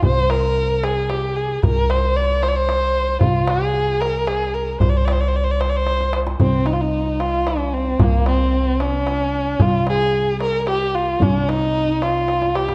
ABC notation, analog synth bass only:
X:1
M:6/8
L:1/8
Q:3/8=75
K:none
V:1 name="Analog synth bass" clef=bass
C,,6 | C,,6 | C,,6 | C,,6 |
C,,6 | C,,6 | C,,6 | C,,6 |]